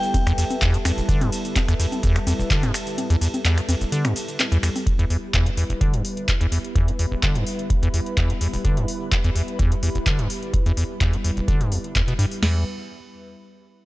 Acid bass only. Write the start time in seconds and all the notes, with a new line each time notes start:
0.27 E2
0.38 E2
0.61 E2
0.74 G2
0.85 E2
0.98 E1
1.09 D3
1.21 G2
1.68 E2
1.80 E2
2.03 E2
2.16 G2
2.27 E2
2.39 E1
2.50 D3
2.63 G2
3.10 E2
3.21 E2
3.45 E2
3.57 G2
3.69 E2
3.81 E1
3.92 D3
4.05 G2
4.52 E2
4.63 E2
4.99 E2
5.10 E2
5.34 E2
5.46 G2
5.57 E2
5.70 E1
5.81 D3
5.93 G2
6.41 E2
6.52 E2
6.75 E2
6.88 G2
6.99 E2
7.12 E1
7.23 D3
7.35 G2
7.83 E2
7.94 E2
8.17 E2
8.30 G2
8.41 E2
8.53 E1
8.65 D3
8.77 G2
9.24 E2
9.35 E2
9.59 E2
9.72 G2
9.83 E2
9.95 E1
10.06 D3
10.19 G2
10.66 E2
10.77 E2
11.01 E2
11.13 G2
11.24 E2
11.37 E1
11.48 D3
11.60 G2
11.72 E2
11.95 E2
12.08 B2
12.19 G2
12.42 E2